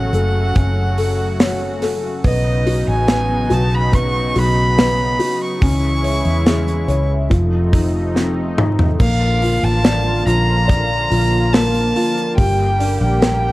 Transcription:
0.00 2.21 C#3 medium
0.00 2.21 F#3 medium
0.00 2.21 A3 medium
0.00 0.54 C#4 medium
0.00 2.21 F#4 medium
0.00 0.12 A4 medium
0.00 1.83 F#5 medium
0.13 0.52 F#1 loud
0.13 0.96 A4 medium
0.13 hi-hat pedal medium
0.13 open hi-hat medium
0.55 2.21 F#1 loud
0.55 2.21 C#4 medium
0.55 kick medium
0.55 hi-hat pedal medium
0.55 open hi-hat medium
0.97 1.81 A4 medium
0.97 hi-hat pedal medium
0.97 open hi-hat medium
1.40 2.22 C#5 medium
1.40 snare loud
1.40 hi-hat pedal medium
1.40 open hi-hat medium
1.82 2.23 A4 medium
1.82 snare soft
1.82 hi-hat pedal medium
1.82 open hi-hat medium
2.24 2.84 B1 loud
2.24 5.60 C#3 medium
2.24 5.59 F#3 medium
2.24 3.07 B3 medium
2.24 5.60 B3 medium
2.24 5.59 D#4 medium
2.24 2.85 D#5 medium
2.24 kick loud
2.24 hi-hat pedal medium
2.24 open hi-hat loud
2.66 3.48 F#4 medium
2.66 hi-hat pedal medium
2.66 open hi-hat medium
2.88 3.47 A1 medium
2.88 3.55 G#5 loud
3.08 3.90 B3 medium
3.08 snare loud
3.08 hi-hat pedal medium
3.08 open hi-hat medium
3.50 4.32 B1 loud
3.50 4.34 F#4 medium
3.50 3.76 A5 loud
3.50 hi-hat pedal medium
3.50 open hi-hat medium
3.75 3.96 B5 medium
3.92 4.76 B3 medium
3.92 4.39 C#6 loud
3.92 kick medium
3.92 hi-hat pedal medium
3.92 open hi-hat medium
4.35 5.16 B1 medium
4.35 5.18 F#4 medium
4.35 5.42 B5 loud
4.35 hi-hat pedal medium
4.35 open hi-hat medium
4.77 5.60 B3 medium
4.77 snare loud
4.77 hi-hat pedal medium
4.77 open hi-hat medium
5.19 5.61 F#4 medium
5.19 hi-hat pedal medium
5.19 open hi-hat medium
5.44 7.08 C#6 loud
5.61 6.22 C#2 loud
5.61 7.30 C#3 medium
5.61 7.29 E3 medium
5.61 7.29 G#3 medium
5.61 7.27 C#4 medium
5.61 7.30 E4 medium
5.61 kick loud
5.61 hi-hat pedal medium
5.61 open hi-hat loud
6.03 6.87 C#5 medium
6.03 hi-hat pedal medium
6.03 open hi-hat medium
6.25 6.85 E2 medium
6.25 open hi-hat medium
6.46 7.28 G#4 medium
6.46 snare loud
6.46 hi-hat pedal medium
6.46 open hi-hat medium
6.67 hi-hat pedal medium
6.88 7.28 C#2 loud
6.88 7.30 C#5 medium
6.88 hi-hat pedal medium
6.88 open hi-hat medium
7.30 8.96 F1 loud
7.30 8.99 C3 medium
7.30 8.96 F3 medium
7.30 8.99 F3 medium
7.30 8.99 A3 medium
7.30 8.99 D#4 loud
7.30 kick medium
7.30 hi-hat pedal medium
7.30 open hi-hat medium
7.72 8.56 D#4 medium
7.72 kick medium
7.72 hi-hat pedal medium
7.72 open hi-hat medium
8.15 8.97 C4 medium
8.15 snare medium
8.57 8.99 D#4 medium
8.57 mid tom medium
8.79 floor tom medium
9.00 9.60 A#1 loud
9.00 12.35 D3 medium
9.00 12.35 F3 medium
9.00 11.51 A#3 medium
9.00 13.52 A#3 medium
9.00 12.35 F4 medium
9.00 9.66 F5 loud
9.00 kick loud
9.00 crash loud
9.42 10.25 F4 medium
9.42 hi-hat pedal medium
9.42 open hi-hat medium
9.63 10.23 A1 medium
9.63 10.27 A5 loud
9.84 10.66 D5 medium
9.84 snare loud
9.84 hi-hat pedal medium
9.84 open hi-hat loud
10.26 11.07 A#1 loud
10.26 11.09 F4 medium
10.26 11.54 A#5 loud
10.26 hi-hat pedal medium
10.26 open hi-hat medium
10.68 12.34 D5 medium
10.68 kick loud
10.68 hi-hat pedal medium
10.68 open hi-hat medium
11.10 11.92 A#1 loud
11.10 11.94 F4 medium
11.10 hi-hat pedal medium
11.10 open hi-hat medium
11.53 12.35 A#3 medium
11.53 12.37 A5 loud
11.53 snare loud
11.53 hi-hat pedal medium
11.53 open hi-hat loud
11.75 open hi-hat medium
11.96 12.37 F4 medium
11.96 hi-hat pedal medium
11.96 open hi-hat medium
12.17 hi-hat pedal medium
12.37 12.98 G1 loud
12.37 13.52 D3 medium
12.37 13.52 G3 medium
12.37 13.52 G4 loud
12.37 12.97 G5 loud
12.37 kick loud
12.37 hi-hat pedal medium
12.37 open hi-hat loud
12.80 13.52 D4 medium
12.80 hi-hat pedal medium
12.80 open hi-hat medium
13.00 13.52 A#1 loud
13.00 13.52 G5 loud
13.22 13.52 A#4 medium
13.22 snare loud
13.22 hi-hat pedal medium
13.22 open hi-hat loud

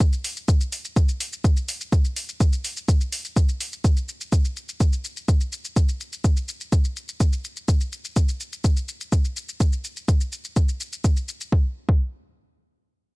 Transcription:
0.00 kick loud
0.00 shaker medium
0.13 shaker soft
0.24 open hi-hat loud
0.24 shaker soft
0.37 shaker soft
0.48 kick loud
0.48 shaker medium
0.61 shaker soft
0.72 open hi-hat medium
0.72 shaker medium
0.85 shaker soft
0.96 kick loud
0.96 shaker medium
1.09 shaker soft
1.20 open hi-hat loud
1.20 shaker soft
1.33 shaker soft
1.44 kick loud
1.44 shaker medium
1.57 shaker soft
1.68 open hi-hat medium
1.68 shaker medium
1.81 shaker soft
1.92 kick loud
1.92 shaker medium
2.05 shaker soft
2.16 open hi-hat loud
2.16 shaker soft
2.29 shaker soft
2.40 kick loud
2.40 shaker medium
2.53 shaker soft
2.64 open hi-hat medium
2.64 shaker soft
2.77 shaker soft
2.88 kick loud
2.88 shaker medium
3.01 shaker soft
3.12 open hi-hat loud
3.12 shaker soft
3.25 shaker soft
3.36 kick loud
3.36 shaker medium
3.49 shaker soft
3.61 open hi-hat medium
3.61 shaker soft
3.73 shaker soft
3.84 kick loud
3.84 shaker medium
3.97 shaker soft
4.09 shaker soft
4.21 shaker soft
4.32 kick loud
4.32 shaker medium
4.45 shaker soft
4.56 shaker soft
4.69 shaker soft
4.80 kick loud
4.80 shaker medium
4.93 shaker soft
5.04 shaker soft
5.17 shaker soft
5.28 kick loud
5.28 shaker medium
5.41 shaker soft
5.52 shaker soft
5.65 shaker soft
5.76 kick loud
5.76 shaker medium
5.89 shaker soft
6.00 shaker soft
6.13 shaker soft
6.24 kick loud
6.24 shaker medium
6.37 shaker soft
6.48 shaker soft
6.61 shaker soft
6.72 kick loud
6.72 shaker medium
6.85 shaker soft
6.96 shaker soft
7.09 shaker soft
7.20 kick loud
7.20 shaker medium
7.33 shaker soft
7.44 shaker medium
7.57 shaker soft
7.68 kick loud
7.68 shaker medium
7.81 shaker soft
7.92 shaker soft
8.05 shaker soft
8.16 kick loud
8.16 shaker medium
8.29 shaker soft
8.40 shaker soft
8.53 shaker soft
8.64 kick loud
8.64 shaker medium
8.77 shaker soft
8.88 shaker medium
9.01 shaker soft
9.12 kick loud
9.12 shaker medium
9.25 shaker soft
9.36 shaker medium
9.49 shaker soft
9.60 kick loud
9.60 shaker medium
9.73 shaker soft
9.84 shaker soft
9.97 shaker soft
10.08 kick loud
10.08 shaker medium
10.21 shaker soft
10.32 shaker soft
10.45 shaker soft
10.56 kick loud
10.56 shaker medium
10.69 shaker soft
10.80 shaker medium
10.93 shaker soft
11.04 kick loud
11.04 shaker medium
11.17 shaker soft
11.28 shaker medium
11.41 shaker soft
11.52 kick loud
11.89 kick loud

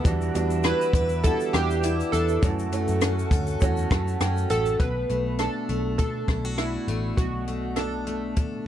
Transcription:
0.00 0.35 B3 medium
0.00 0.38 E4 medium
0.00 0.12 A4 medium
0.00 2.39 B4 medium
0.04 0.29 E2 loud
0.04 2.46 E3 medium
0.04 0.32 G3 medium
0.04 0.32 B3 medium
0.04 0.32 D4 medium
0.04 0.33 F#4 loud
0.04 2.40 E5 medium
0.04 2.40 D6 medium
0.04 4.76 E6 medium
0.04 kick loud
0.04 closed hi-hat medium
0.04 shaker medium
0.21 shaker medium
0.21 shaker soft
0.34 0.72 E2 loud
0.34 1.16 G3 medium
0.34 1.16 B3 medium
0.34 1.53 D4 medium
0.34 1.17 D4 medium
0.34 1.17 F#4 medium
0.34 closed hi-hat medium
0.34 shaker medium
0.34 shaker soft
0.50 shaker medium
0.50 shaker soft
0.64 1.24 E4 medium
0.64 1.25 B4 loud
0.64 cross-stick medium
0.64 closed hi-hat medium
0.64 shaker medium
0.81 shaker medium
0.81 shaker soft
0.93 1.31 E2 loud
0.93 2.50 B4 medium
0.93 kick medium
0.93 closed hi-hat medium
0.93 shaker medium
1.09 shaker medium
1.11 shaker soft
1.24 2.33 G3 medium
1.24 2.33 B3 medium
1.24 2.33 D4 medium
1.24 1.83 E4 medium
1.24 1.51 A4 medium
1.24 2.34 F#5 medium
1.24 kick medium
1.24 closed hi-hat medium
1.24 shaker medium
1.40 shaker medium
1.40 shaker soft
1.53 2.01 E2 medium
1.53 2.12 D4 medium
1.53 2.15 G4 medium
1.53 cross-stick loud
1.53 closed hi-hat soft
1.53 shaker soft
1.70 shaker soft
1.83 3.02 E4 medium
1.83 closed hi-hat medium
1.83 shaker medium
2.00 shaker soft
2.00 shaker medium
2.12 2.37 E2 medium
2.12 2.49 D4 medium
2.12 4.16 A4 medium
2.12 closed hi-hat medium
2.12 shaker medium
2.28 shaker medium
2.28 shaker soft
2.41 4.80 F#2 medium
2.41 2.66 F#2 loud
2.41 2.69 A3 medium
2.41 2.70 C#4 medium
2.41 2.70 E4 medium
2.41 2.70 F#4 medium
2.41 4.77 A4 medium
2.41 4.78 F#5 medium
2.41 4.77 C#6 medium
2.41 kick loud
2.41 closed hi-hat medium
2.41 shaker medium
2.59 shaker medium
2.59 shaker soft
2.72 3.54 A3 medium
2.72 3.90 A3 medium
2.72 3.54 C#4 medium
2.72 3.54 E4 medium
2.72 3.55 F#4 medium
2.72 closed hi-hat medium
2.72 shaker medium
2.72 shaker soft
2.88 3.23 F#2 medium
2.88 shaker medium
2.90 shaker soft
3.01 3.61 C#4 medium
3.01 cross-stick medium
3.01 closed hi-hat medium
3.01 shaker medium
3.19 shaker soft
3.19 shaker medium
3.31 3.55 D2 medium
3.31 6.28 A4 medium
3.31 kick medium
3.31 closed hi-hat medium
3.31 shaker medium
3.47 shaker medium
3.47 shaker soft
3.60 3.85 E2 loud
3.60 4.70 A3 medium
3.60 4.70 C#4 medium
3.60 4.19 C#4 medium
3.60 4.71 E4 medium
3.60 4.71 F#4 loud
3.60 kick medium
3.60 closed hi-hat medium
3.60 shaker medium
3.77 shaker medium
3.78 shaker soft
3.91 4.15 F#2 medium
3.91 4.50 A3 medium
3.91 4.19 A5 medium
3.91 kick loud
3.91 cross-stick loud
3.91 closed hi-hat soft
3.91 shaker soft
4.08 shaker soft
4.21 4.44 F#2 loud
4.21 4.87 C#4 medium
4.21 4.48 G5 medium
4.21 cross-stick medium
4.21 closed hi-hat medium
4.21 shaker medium
4.37 shaker soft
4.37 shaker medium
4.50 4.74 A1 medium
4.50 5.09 A3 medium
4.50 4.81 A4 loud
4.50 4.78 F#5 medium
4.50 closed hi-hat medium
4.50 shaker medium
4.50 shaker soft
4.66 shaker medium
4.66 shaker soft
4.80 5.04 B1 medium
4.80 7.17 B2 medium
4.80 5.35 B4 medium
4.80 kick loud
4.80 closed hi-hat medium
5.10 5.47 B1 medium
5.10 5.68 A3 soft
5.10 closed hi-hat soft
5.38 5.98 D4 medium
5.38 5.97 A4 medium
5.38 cross-stick medium
5.38 closed hi-hat medium
5.69 6.00 B1 medium
5.69 6.87 A3 soft
5.69 closed hi-hat soft
5.98 6.23 B2 medium
5.98 6.58 D4 medium
5.98 6.60 A4 medium
5.98 kick medium
5.98 closed hi-hat medium
6.28 6.76 B1 medium
6.28 6.45 E4 medium
6.28 kick medium
6.28 cross-stick medium
6.28 closed hi-hat soft
6.45 8.66 F#4 soft
6.58 7.77 D4 medium
6.58 7.19 E4 medium
6.58 cross-stick medium
6.58 closed hi-hat medium
6.88 7.12 A1 medium
6.88 7.46 A3 medium
6.88 closed hi-hat soft
7.17 8.37 B1 medium
7.17 8.67 B2 medium
7.17 7.79 F#4 medium
7.17 kick medium
7.17 closed hi-hat medium
7.47 8.06 A3 medium
7.47 closed hi-hat soft
7.76 8.36 D4 medium
7.76 8.67 A4 medium
7.76 cross-stick medium
7.76 closed hi-hat medium
8.07 8.67 A3 medium
8.07 closed hi-hat soft
8.36 8.61 A1 medium
8.36 8.67 D4 soft
8.36 kick medium
8.36 closed hi-hat medium

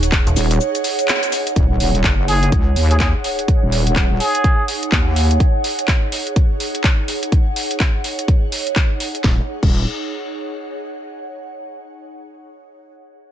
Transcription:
0.00 0.25 D#1 loud
0.00 9.23 D#4 medium
0.00 9.24 G#4 medium
0.00 9.24 C#5 medium
0.00 9.24 F#5 medium
0.00 closed hi-hat medium
0.00 cabasa soft
0.12 kick loud
0.12 clap loud
0.12 cabasa soft
0.27 0.35 D#1 loud
0.27 closed hi-hat medium
0.27 cabasa soft
0.36 0.59 D#1 loud
0.36 open hi-hat medium
0.36 cabasa medium
0.51 closed hi-hat medium
0.51 cabasa soft
0.61 cabasa soft
0.75 closed hi-hat medium
0.75 cabasa soft
0.84 open hi-hat loud
0.84 cabasa medium
0.99 closed hi-hat medium
0.99 cabasa soft
1.08 clap loud
1.08 cabasa soft
1.23 closed hi-hat soft
1.23 cabasa soft
1.32 open hi-hat medium
1.32 cabasa medium
1.47 closed hi-hat medium
1.47 cabasa soft
1.56 1.79 D#1 medium
1.56 kick loud
1.56 closed hi-hat medium
1.56 sub drop medium
1.80 2.03 D#1 medium
1.80 open hi-hat loud
1.95 closed hi-hat medium
2.04 2.51 F#1 loud
2.04 kick loud
2.04 clap loud
2.04 closed hi-hat medium
2.28 2.50 G#4 medium
2.28 open hi-hat loud
2.43 closed hi-hat medium
2.52 2.75 C#2 medium
2.52 kick loud
2.52 closed hi-hat medium
2.76 3.12 D#2 loud
2.76 open hi-hat loud
2.91 2.97 G#4 medium
2.91 closed hi-hat medium
3.00 3.10 G#4 medium
3.00 kick loud
3.00 clap loud
3.00 closed hi-hat medium
3.24 open hi-hat medium
3.39 closed hi-hat medium
3.48 kick loud
3.48 closed hi-hat medium
3.63 4.09 D#1 loud
3.72 open hi-hat loud
3.87 closed hi-hat medium
3.96 kick loud
3.96 clap loud
3.96 closed hi-hat medium
4.11 4.19 D#1 loud
4.20 4.68 G#4 medium
4.20 open hi-hat loud
4.35 closed hi-hat medium
4.44 kick loud
4.44 closed hi-hat medium
4.68 open hi-hat loud
4.83 closed hi-hat medium
4.92 5.39 D#2 loud
4.92 kick loud
4.92 clap loud
4.92 closed hi-hat medium
5.16 open hi-hat loud
5.31 closed hi-hat medium
5.40 kick loud
5.40 closed hi-hat medium
5.64 open hi-hat loud
5.79 closed hi-hat medium
5.88 kick loud
5.88 clap loud
5.88 closed hi-hat medium
6.12 open hi-hat loud
6.27 closed hi-hat medium
6.36 kick loud
6.36 closed hi-hat soft
6.60 open hi-hat loud
6.75 closed hi-hat medium
6.84 kick loud
6.84 clap loud
6.84 closed hi-hat medium
7.08 open hi-hat medium
7.23 closed hi-hat medium
7.32 kick loud
7.32 closed hi-hat medium
7.56 open hi-hat loud
7.71 closed hi-hat medium
7.80 kick loud
7.80 clap loud
7.80 closed hi-hat medium
8.04 open hi-hat loud
8.19 closed hi-hat medium
8.28 kick loud
8.28 closed hi-hat soft
8.52 open hi-hat loud
8.67 closed hi-hat medium
8.76 kick loud
8.76 clap loud
8.76 closed hi-hat soft
9.00 open hi-hat loud
9.15 closed hi-hat medium
9.24 9.40 D#1 loud
9.24 11.12 D#4 medium
9.24 kick loud
9.24 snare medium
9.33 11.12 G#4 medium
9.41 11.12 C#5 medium
9.47 11.12 F#5 medium
9.63 9.85 D#1 medium
9.63 kick loud
9.63 crash medium

